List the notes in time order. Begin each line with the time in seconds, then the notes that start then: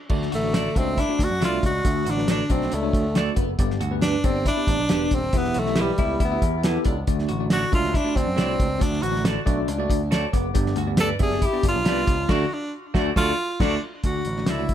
0.09 D2 D3 A3 D4 F#4 D5, kick, crash
0.22 snare
0.32 A1 A3 F#4, closed hi-hat
0.43 A3 D4 F#4 D5
0.53 F#4 A4 D5, snare, closed hi-hat
0.75 C#2 A3 C4 D4 F#4 E5, kick, closed hi-hat
0.97 D4 E4, kick, closed hi-hat
1.09 A3 D4 F#4 D5
1.18 D2 D4, kick, closed hi-hat
1.24 F#4
1.30 F#2
1.40 C2 A3 D4 F#4 A4 D5 E5, snare, closed hi-hat
1.45 F4
1.63 C#2 F#4, kick, closed hi-hat
1.84 D2 D3 A3 D4 F#4 E5, kick, closed hi-hat
2.05 A1 F#4, closed hi-hat
2.10 D4
2.17 A3 D4 F#4 B4, snare
2.28 D4 F#4 A4 D5, snare, closed hi-hat
2.49 B1 A3 C4 D4 F#4 D5, kick, closed hi-hat
2.62 snare
2.71 C#2 A3 D4, closed hi-hat
2.82 A3 D4 F#4 C#5
2.93 D2, kick, closed hi-hat
3.15 A3 D4 F#4 A4 D5, snare, closed hi-hat
3.36 F#1 B3, kick, closed hi-hat
3.59 G1 G2 B3 D4 G4 D5, kick, closed hi-hat
3.70 snare
3.81 D2 F#4, closed hi-hat
3.90 B3 D4 G4 B4
4.01 D4 G4 B4, snare, closed hi-hat
4.24 G1 B3 C4 D4 G4 D5, kick, closed hi-hat
4.46 D4 E4, kick, closed hi-hat
4.56 B3 D4 G4 D5
4.67 A1 D4, kick, closed hi-hat
4.79 B1
4.88 E1 B3 D4 G4 B4 D5, snare, closed hi-hat
5.11 D#1 C4, kick, closed hi-hat
5.33 E1 E3 B3 E4 G4 E5, kick, closed hi-hat
5.38 B3
5.44 snare
5.54 B1 F#4, closed hi-hat
5.59 A3
5.66 B3 E4 G4 E5, snare
5.75 E4 G4 B4, snare, closed hi-hat
5.81 G3
5.98 C#2 B3 E4 G4 E5, kick, closed hi-hat
6.20 D2 E4, kick, closed hi-hat
6.24 B3
6.31 B3 E4 G4 E5
6.42 E2, kick, closed hi-hat
6.63 B3 E4 G4 A4 B4, snare, closed hi-hat
6.85 C#2 D4, kick, closed hi-hat
7.07 D2 D3 A3 D4 F#4 D5, kick, closed hi-hat
7.19 snare
7.29 A1 F#4, closed hi-hat
7.39 A3 D4 F#4 D5
7.50 F#4 A4 D5, snare, closed hi-hat
7.72 C#2 A3 D4 F4 F#4 E5, kick, closed hi-hat
7.84 snare
7.94 D4 E4, kick, closed hi-hat
8.04 A3 D4 F#4 D5
8.16 D2 C4 D4, kick, closed hi-hat
8.27 F#2
8.36 C2 A3 D4 F#4 A4 C#5 D5, snare, closed hi-hat
8.60 C#2, kick, closed hi-hat
8.79 D2 D3 A3 D4 F#4 D5, kick, closed hi-hat
8.93 snare
9.02 A1 F#4, closed hi-hat
9.12 A3 D4 F#4 D5, snare
9.25 F#4 A4 D5, snare, closed hi-hat
9.46 B1 A3 D4 F#4 D5, kick, closed hi-hat
9.68 C#2 D4, closed hi-hat
9.79 A3 D4 F#4 D5
9.90 D2, kick, closed hi-hat
10.11 F#4 A4 C#5 D5 A5, snare, closed hi-hat
10.33 F#1 B3 F#5 D6, kick, closed hi-hat
10.54 G1 G2 B3 D4 G4 D5, kick, closed hi-hat
10.66 snare
10.76 D2 F#4, closed hi-hat
10.87 B3 D4 G4 D5
10.97 G4 A4 B4 D5, snare, closed hi-hat
11.19 F#1 B3 D4 G4 G#4 E5, kick, closed hi-hat
11.31 snare
11.42 E4 G4, kick, closed hi-hat
11.53 B3 D4 G4 D5
11.63 G1 D4, kick, closed hi-hat
11.68 F4
11.75 B1
11.85 C2 B3 D4 G4 B4 D5, snare, closed hi-hat
12.07 C#2, kick, closed hi-hat
12.29 D2 D3 A3 D4 F#4 A4 D5, kick, snare, crash
12.53 D4
12.94 D2 A3 D4 F#4 A4 D5, kick, snare
13.16 D2 A3 D4 F4 F#4 A4 D5, kick, snare
13.60 D2 A3 D4 F#4 A4 D5, kick, snare, crash
14.04 D2 D3 A3 D4 F#4 D5, kick, closed hi-hat
14.25 A1, closed hi-hat
14.37 A3 D4 F#4 D5, snare
14.46 C#2 E4 F#4 A4 D5, snare, closed hi-hat
14.58 A3 D4 F#4 D5
14.69 kick, closed hi-hat